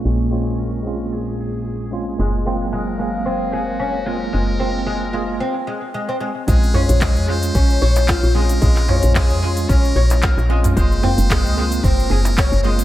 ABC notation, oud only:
X:1
M:4/4
L:1/16
Q:"Swing 16ths" 1/4=112
K:Bbm
V:1 name="Oud" clef=bass
z16 | A,2 C z A,2 A, z C2 A z D z A, z | A,2 C z A,2 A, z C z A, z A, C A, z | A,2 D z A,2 A, z D2 d z F z A, z |
A,2 D z A,2 A, z D2 d z F z A, z | A,2 C z A,2 A, z C2 A z D z A, z |]